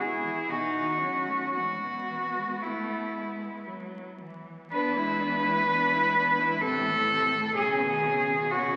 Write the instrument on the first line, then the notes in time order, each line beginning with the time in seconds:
cello
Already playing: B2
0.00 B2 E4 G#4
0.24 E3
0.49 B2 D#4 F#4
0.75 D#3
1.01 F#3 C#4
1.28 A3
1.54 E2 G#2 B3 F#4
1.82 B2
2.09 E3
2.35 G#3
2.61 A3 E4
3.15 G#3
3.67 F#3
4.21 E3
4.71 E2 B3 D4 B4
4.96 G#3 E4
5.20 B3 D4
5.44 G#3 E4
5.67 B3 D4
5.91 G#3 E4
6.15 B3 D4
6.39 G#3 E4
6.61 A2 C3 C4 A4
6.86 E3 A3
7.10 C3 C4
7.33 E3 A3
7.56 B2 C#3 C#4 G#4
7.81 D#3 B3
8.04 C#3 C#4
8.29 D#3 B3
8.51 C#3 C#4 F#4